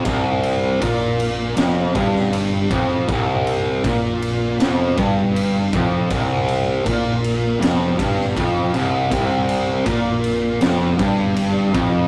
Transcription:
0.05 0.78 C1 medium
0.05 0.80 C2 loud
0.05 kick medium
0.05 ride loud
0.43 ride medium
0.81 1.53 A#1 loud
0.81 1.56 A#2 medium
0.81 kick loud
0.81 ride loud
1.20 ride medium
1.57 1.93 F1 medium
1.57 1.94 F2 loud
1.57 snare loud
1.57 ride loud
1.95 2.67 G1 medium
1.95 2.69 G2 loud
1.95 kick loud
1.95 ride medium
2.16 snare soft
2.33 ride medium
2.71 3.06 F1 medium
2.71 3.07 F2 loud
2.71 kick loud
2.71 ride medium
3.08 3.80 C1 medium
3.08 3.83 C2 loud
3.08 kick loud
3.08 ride medium
3.47 ride medium
3.84 4.56 A#1 loud
3.84 4.59 A#2 loud
3.84 kick loud
3.84 ride medium
4.22 ride medium
4.60 4.95 F1 loud
4.60 4.96 F2 loud
4.60 snare loud
4.60 ride loud
4.98 5.69 G1 medium
4.98 5.72 G2 loud
4.98 kick loud
4.98 ride medium
5.36 ride medium
5.73 6.08 F1 medium
5.73 6.10 F2 loud
5.73 kick loud
5.73 ride medium
6.10 6.82 C1 medium
6.10 6.85 C2 medium
6.10 kick loud
6.10 ride medium
6.48 ride medium
6.85 7.57 A#1 medium
6.85 7.60 A#2 medium
6.85 kick loud
6.85 ride loud
7.24 ride medium
7.60 7.96 F1 loud
7.60 7.97 F2 loud
7.60 snare loud
7.60 ride loud
7.98 8.34 G1 medium
7.98 8.35 G2 loud
7.98 kick loud
7.98 ride medium
8.20 snare soft
8.36 8.72 F1 medium
8.36 8.73 F2 loud
8.36 kick loud
8.36 ride medium
8.74 9.09 C1 medium
8.74 9.10 C2 loud
8.74 ride medium
9.11 9.83 C1 loud
9.11 9.85 C2 loud
9.11 kick loud
9.11 ride medium
9.49 ride medium
9.86 10.58 A#1 medium
9.86 10.60 A#2 medium
9.86 kick loud
9.86 ride medium
10.24 ride medium
10.61 10.97 F1 medium
10.61 10.98 F2 loud
10.61 snare loud
10.61 ride medium
10.98 11.71 G1 medium
10.98 11.73 G2 loud
10.98 kick loud
10.98 ride medium
11.37 ride medium
11.74 12.08 F1 loud
11.74 12.08 F2 loud
11.74 kick loud
11.74 ride medium

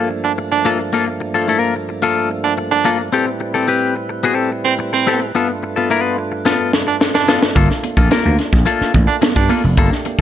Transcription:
0.00 3.10 G2 medium
0.00 3.09 F3 medium
0.00 3.10 A3 medium
0.00 3.10 A#3 medium
0.00 3.10 D4 medium
0.10 muted clean electric guitar stroke soft
0.24 0.33 D4 medium
0.24 muted clean electric guitar stroke soft
0.38 muted clean electric guitar stroke soft
0.52 0.69 D4 medium
0.52 muted clean electric guitar stroke soft
0.65 0.80 A#3 medium
0.65 0.79 F4 medium
0.65 0.78 A4 medium
0.79 muted clean electric guitar stroke soft
0.93 1.08 A#3 medium
0.93 1.06 F4 medium
0.93 1.05 A4 medium
1.06 muted clean electric guitar stroke medium
1.20 muted clean electric guitar stroke soft
1.34 1.47 A#3 medium
1.34 1.46 F4 medium
1.34 1.46 A4 medium
1.48 1.59 A3 medium
1.48 1.59 E4 medium
1.48 1.74 A#4 loud
1.59 1.73 A#3 medium
1.59 1.74 F4 medium
1.76 muted clean electric guitar stroke soft
1.89 muted clean electric guitar stroke soft
2.02 2.28 A#3 medium
2.02 2.28 F4 medium
2.02 2.29 A4 loud
2.31 muted clean electric guitar stroke soft
2.44 2.53 D4 medium
2.44 muted clean electric guitar stroke soft
2.58 muted clean electric guitar stroke soft
2.71 2.89 D4 loud
2.71 muted clean electric guitar stroke soft
2.85 3.01 A#3 medium
2.85 2.99 F4 medium
2.85 2.98 A4 medium
2.99 muted clean electric guitar stroke soft
3.13 5.32 A2 medium
3.13 5.32 G3 medium
3.13 3.28 C4 medium
3.13 5.32 C4 medium
3.13 5.32 E4 medium
3.13 3.26 G4 loud
3.13 3.26 A4 loud
3.13 7.52 B4 medium
3.27 muted clean electric guitar stroke medium
3.40 muted clean electric guitar stroke soft
3.54 3.66 C4 medium
3.54 3.67 G4 medium
3.54 3.66 A4 medium
3.67 3.94 C4 medium
3.67 3.94 G4 medium
3.67 3.94 B4 medium
3.95 muted clean electric guitar stroke soft
4.09 muted clean electric guitar stroke soft
4.23 4.34 B3 medium
4.23 4.35 F#4 medium
4.23 4.50 A4 medium
4.34 4.49 C4 medium
4.34 4.50 G4 medium
4.52 muted clean electric guitar stroke soft
4.65 4.74 C4 medium
4.65 muted clean electric guitar stroke soft
4.79 muted clean electric guitar stroke soft
4.93 5.29 C4 medium
4.93 muted clean electric guitar stroke soft
5.07 5.22 C4 medium
5.07 5.21 G4 medium
5.07 5.20 A4 medium
5.21 muted clean electric guitar stroke soft
5.35 7.54 G2 medium
5.35 10.21 A3 medium
5.35 5.50 B3 medium
5.35 10.21 D4 medium
5.35 9.73 F4 medium
5.35 5.48 F4 medium
5.35 5.47 A4 medium
5.49 muted clean electric guitar stroke medium
5.63 muted clean electric guitar stroke soft
5.76 5.89 B3 medium
5.76 5.88 F4 medium
5.76 5.88 A4 medium
5.90 6.01 A#3 medium
5.90 6.02 E4 medium
5.90 6.16 B4 loud
6.01 6.15 B3 medium
6.01 6.16 F4 medium
6.18 muted clean electric guitar stroke soft
6.32 muted clean electric guitar stroke soft
6.45 6.71 B3 medium
6.45 6.71 F4 loud
6.45 6.71 A4 medium
6.45 snare medium
6.73 muted clean electric guitar stroke soft
6.73 snare medium
6.87 6.96 D4 medium
6.87 muted clean electric guitar stroke soft
7.01 muted clean electric guitar stroke soft
7.01 snare medium
7.15 7.32 D4 loud
7.15 muted clean electric guitar stroke soft
7.15 snare medium
7.28 7.43 B3 medium
7.28 7.42 F4 medium
7.28 7.41 A4 medium
7.28 snare medium
7.42 muted clean electric guitar stroke soft
7.42 snare medium
7.56 7.67 G1 loud
7.56 7.71 A#3 medium
7.56 10.21 A#3 medium
7.56 7.69 F4 medium
7.56 7.69 A4 loud
7.56 kick loud
7.56 closed hi-hat medium
7.56 muted conga medium
7.70 muted clean electric guitar stroke medium
7.70 snare soft
7.83 muted clean electric guitar stroke soft
7.83 closed hi-hat medium
7.83 muted conga soft
7.97 8.08 A#1 medium
7.97 8.09 A#3 medium
7.97 8.09 F4 medium
7.97 8.09 A4 medium
7.97 kick medium
7.97 closed hi-hat soft
8.11 8.36 A#3 medium
8.11 8.37 F4 medium
8.11 8.37 A#4 medium
8.11 snare loud
8.11 closed hi-hat loud
8.11 high conga medium
8.25 8.36 D2 medium
8.39 muted clean electric guitar stroke soft
8.39 snare soft
8.39 closed hi-hat medium
8.52 8.64 A#1 loud
8.52 muted clean electric guitar stroke soft
8.52 kick loud
8.52 snare soft
8.52 closed hi-hat medium
8.66 8.92 A#3 medium
8.66 8.92 F4 medium
8.66 8.92 A4 medium
8.66 closed hi-hat medium
8.81 muted slap bass stroke soft
8.81 snare soft
8.94 9.05 A1 medium
8.94 muted clean electric guitar stroke soft
8.94 kick medium
8.94 closed hi-hat medium
8.94 muted conga soft
9.07 9.16 D4 medium
9.07 muted clean electric guitar stroke soft
9.21 muted clean electric guitar stroke soft
9.21 snare loud
9.21 closed hi-hat loud
9.21 high conga medium
9.36 9.47 G2 medium
9.36 9.54 D4 medium
9.36 kick medium
9.49 9.61 A#3 medium
9.49 9.62 F4 medium
9.49 9.62 A4 medium
9.49 open hi-hat medium
9.49 high conga medium
9.64 9.78 F1 medium
9.64 muted clean electric guitar stroke soft
9.77 9.88 G1 medium
9.77 9.93 A#3 medium
9.77 9.91 F4 medium
9.77 10.21 G4 medium
9.77 9.90 A4 loud
9.77 kick loud
9.77 closed hi-hat medium
9.77 muted conga soft
9.91 muted clean electric guitar stroke medium
9.91 snare soft
10.05 muted clean electric guitar stroke soft
10.05 closed hi-hat medium
10.05 muted conga soft

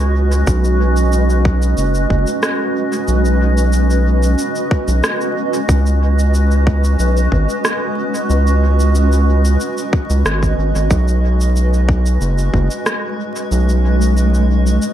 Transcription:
0.00 0.44 C#2 medium
0.00 10.90 G#3 medium
0.00 14.93 C#4 medium
0.00 14.93 F#4 medium
0.00 14.93 B4 medium
0.00 14.93 D#5 medium
0.32 shaker soft
0.47 1.75 B1 loud
0.47 kick loud
0.47 shaker medium
0.64 shaker soft
0.97 shaker soft
1.12 shaker medium
1.30 shaker soft
1.45 kick loud
1.62 shaker soft
1.78 2.07 F#1 medium
1.78 shaker medium
1.95 shaker soft
2.10 2.25 F#1 loud
2.10 kick medium
2.27 shaker soft
2.43 cross-stick loud
2.43 shaker medium
2.93 shaker soft
3.08 4.36 B1 loud
3.08 shaker medium
3.25 shaker soft
3.58 shaker soft
3.73 shaker medium
3.90 shaker soft
4.23 shaker soft
4.38 shaker medium
4.55 shaker soft
4.71 kick loud
4.88 5.02 B1 medium
4.88 shaker soft
5.04 cross-stick loud
5.04 shaker medium
5.21 shaker soft
5.54 shaker soft
5.69 6.96 C#2 loud
5.69 kick loud
5.69 shaker medium
5.86 shaker soft
6.19 shaker soft
6.34 shaker medium
6.51 shaker soft
6.67 kick loud
6.84 shaker soft
6.99 7.28 B1 medium
6.99 shaker medium
7.17 shaker soft
7.32 7.47 G#1 loud
7.32 kick medium
7.49 shaker soft
7.65 cross-stick medium
7.65 shaker medium
8.15 shaker soft
8.30 9.57 C#2 loud
8.30 shaker soft
8.47 shaker soft
8.80 shaker soft
8.95 shaker soft
9.12 shaker soft
9.45 shaker soft
9.60 shaker soft
9.78 shaker soft
9.93 kick loud
10.10 10.24 C#2 medium
10.10 shaker soft
10.25 10.54 G#1 loud
10.25 cross-stick medium
10.25 shaker medium
10.43 kick medium
10.43 shaker soft
10.58 10.73 G#1 medium
10.75 10.89 G#1 medium
10.75 shaker soft
10.91 12.18 B1 loud
10.91 14.93 G#3 medium
10.91 kick loud
10.91 shaker soft
11.08 shaker soft
11.41 shaker soft
11.56 shaker soft
11.74 shaker soft
11.89 kick loud
12.06 shaker soft
12.21 12.50 F#1 loud
12.21 shaker soft
12.38 shaker soft
12.54 12.69 F#1 loud
12.54 kick medium
12.71 shaker soft
12.86 cross-stick medium
12.86 shaker soft
13.36 shaker soft
13.51 14.79 B1 loud
13.51 shaker soft
13.69 shaker soft
14.02 shaker soft
14.17 shaker soft
14.34 shaker soft
14.67 shaker soft
14.82 shaker soft

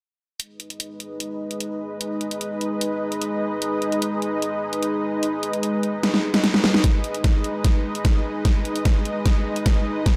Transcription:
0.40 6.80 G#3 medium
0.40 6.80 D#4 medium
0.40 6.80 B4 medium
0.40 6.80 D#5 medium
0.40 closed hi-hat medium
0.60 closed hi-hat medium
0.70 closed hi-hat soft
0.80 closed hi-hat medium
1.00 closed hi-hat medium
1.20 closed hi-hat medium
1.51 closed hi-hat medium
1.60 closed hi-hat medium
2.01 closed hi-hat medium
2.21 closed hi-hat soft
2.31 closed hi-hat soft
2.41 closed hi-hat medium
2.61 closed hi-hat soft
2.81 closed hi-hat medium
3.12 closed hi-hat medium
3.22 closed hi-hat medium
3.62 closed hi-hat medium
3.82 closed hi-hat soft
3.92 closed hi-hat soft
4.02 closed hi-hat medium
4.22 closed hi-hat soft
4.42 closed hi-hat medium
4.73 closed hi-hat soft
4.83 closed hi-hat medium
5.23 closed hi-hat medium
5.43 closed hi-hat soft
5.53 closed hi-hat soft
5.63 closed hi-hat medium
5.83 closed hi-hat soft
6.03 snare medium
6.03 closed hi-hat medium
6.14 snare medium
6.34 snare medium
6.34 closed hi-hat soft
6.44 snare medium
6.44 closed hi-hat medium
6.54 snare medium
6.64 snare medium
6.74 snare medium
6.84 10.16 G#3 medium
6.84 10.16 D#4 medium
6.84 10.16 B4 medium
6.84 10.16 D#5 medium
6.84 kick medium
6.84 snare soft
6.84 closed hi-hat medium
7.04 closed hi-hat medium
7.14 closed hi-hat medium
7.24 kick medium
7.24 snare soft
7.24 closed hi-hat medium
7.44 closed hi-hat medium
7.64 kick loud
7.64 snare soft
7.64 closed hi-hat medium
7.95 closed hi-hat medium
8.05 kick medium
8.05 snare soft
8.05 closed hi-hat medium
8.45 kick medium
8.45 snare medium
8.45 closed hi-hat medium
8.65 closed hi-hat medium
8.76 closed hi-hat soft
8.85 kick medium
8.85 snare medium
8.85 closed hi-hat medium
9.05 closed hi-hat medium
9.26 kick medium
9.26 snare medium
9.26 closed hi-hat medium
9.56 closed hi-hat medium
9.66 kick medium
9.66 snare medium
9.66 closed hi-hat medium
10.06 kick medium
10.06 snare medium
10.06 closed hi-hat medium

